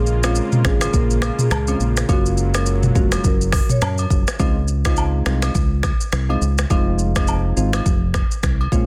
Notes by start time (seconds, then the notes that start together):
Already playing: A#1 C#3 G#3 A#3 F4
0.06 shaker
0.23 G#3 C4 C#4 F4, finger snap, cross-stick, high agogo, shaker
0.35 shaker
0.52 mid tom, shaker
0.64 G#1 G#3 C4 C#4 F4 G#4, finger snap, kick, cross-stick, shaker
0.81 finger snap, cross-stick, high agogo, shaker
0.94 A#1 A#4, kick, shaker
1.11 shaker
1.22 finger snap, cross-stick, high agogo, shaker
1.39 G#4, mid tom, shaker
1.51 C#2, finger snap, cross-stick, low woodblock, shaker
1.67 G#3 C4 C#4 F4, high agogo, shaker
1.80 A#1, shaker
1.97 finger snap, cross-stick, shaker
2.09 F#1 F#3 G#3 A#3 C#4 F4 F#4, kick, high agogo, shaker
2.26 shaker
2.37 shaker
2.54 G#3 A#3 C#4 F4 A#4, finger snap, cross-stick, high agogo, shaker
2.66 shaker
2.83 mid tom, shaker
2.95 F1 G#3 A#3 C#4 F4 F#4, kick, shaker
3.12 finger snap, cross-stick, high agogo, shaker
3.24 F#1 A#4, kick, shaker
3.41 shaker
3.52 finger snap, kick, cross-stick, open hi-hat, high agogo, shaker
3.69 C#5, mid tom, shaker
3.82 F#2, finger snap, cross-stick, low woodblock, shaker
3.98 high agogo, shaker
4.10 F#1, kick, shaker
4.27 finger snap, cross-stick, shaker
4.39 C#2 G#3 C4 D#4 F4, kick, high agogo, shaker
4.68 shaker
4.85 G#3 C4 D#4 F4, finger snap, kick, cross-stick, high agogo, shaker
4.97 low woodblock, shaker
5.26 C2 G#3 C4 D#4 F4, finger snap, cross-stick, shaker
5.42 finger snap, cross-stick, high agogo, shaker
5.55 C#2, kick, shaker
5.83 finger snap, kick, cross-stick, high agogo, shaker
6.01 shaker
6.12 C2, finger snap, cross-stick, shaker
6.29 G#3 C4 D#4 F4, high agogo
6.41 C#2, shaker
6.58 finger snap, cross-stick, shaker
6.70 F1 G#3 C4 D#4 F4, kick, high agogo, shaker
6.99 shaker
7.16 G#3 C4 D#4 F4, finger snap, kick, cross-stick, high agogo, shaker
7.27 low woodblock, shaker
7.56 G#1 G#3 C4 D#4 F4, shaker
7.73 finger snap, cross-stick, high agogo, shaker
7.86 F1, kick, shaker
8.14 finger snap, kick, cross-stick, high agogo, shaker
8.31 shaker
8.43 C2, finger snap, kick, cross-stick, shaker
8.61 high agogo
8.72 A#1 G#3 C4 C#4 F4, kick, shaker